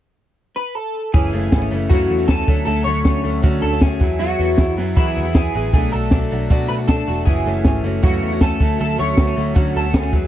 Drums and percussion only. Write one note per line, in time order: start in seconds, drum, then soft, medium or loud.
1.14 kick loud
1.14 closed hi-hat medium
1.33 open hi-hat medium
1.52 kick loud
1.52 snare loud
1.52 closed hi-hat medium
1.71 open hi-hat medium
1.90 kick loud
1.90 closed hi-hat medium
2.10 open hi-hat medium
2.28 kick loud
2.28 snare loud
2.28 closed hi-hat medium
2.48 kick loud
2.48 open hi-hat medium
2.68 closed hi-hat medium
2.86 open hi-hat medium
3.05 kick loud
3.05 snare medium
3.05 closed hi-hat medium
3.25 open hi-hat medium
3.43 kick loud
3.43 closed hi-hat medium
3.64 open hi-hat medium
3.81 kick loud
3.81 snare loud
3.81 closed hi-hat medium
4.00 kick medium
4.00 open hi-hat medium
4.20 closed hi-hat medium
4.39 open hi-hat medium
4.58 kick loud
4.58 snare medium
4.58 closed hi-hat medium
4.77 open hi-hat medium
4.96 kick loud
4.96 closed hi-hat medium
5.16 open hi-hat medium
5.34 kick loud
5.34 snare loud
5.34 closed hi-hat medium
5.54 open hi-hat medium
5.73 kick loud
5.73 closed hi-hat medium
5.92 open hi-hat medium
6.11 kick loud
6.11 snare medium
6.11 closed hi-hat medium
6.31 open hi-hat medium
6.50 kick loud
6.50 closed hi-hat medium
6.71 open hi-hat medium
6.88 kick loud
6.88 snare loud
6.88 closed hi-hat medium
7.08 open hi-hat medium
7.27 kick loud
7.27 closed hi-hat medium
7.46 open hi-hat medium
7.65 kick loud
7.65 snare medium
7.65 closed hi-hat medium
7.84 open hi-hat medium
8.03 kick loud
8.03 closed hi-hat medium
8.22 open hi-hat medium
8.40 kick loud
8.40 snare loud
8.40 closed hi-hat medium
8.60 kick medium
8.60 open hi-hat medium
8.79 closed hi-hat medium
8.98 open hi-hat medium
9.17 kick loud
9.17 snare loud
9.17 closed hi-hat medium
9.37 open hi-hat medium
9.56 kick loud
9.56 closed hi-hat medium
9.76 open hi-hat medium
9.94 kick loud
9.94 snare loud
9.94 closed hi-hat medium
10.13 kick loud
10.13 open hi-hat medium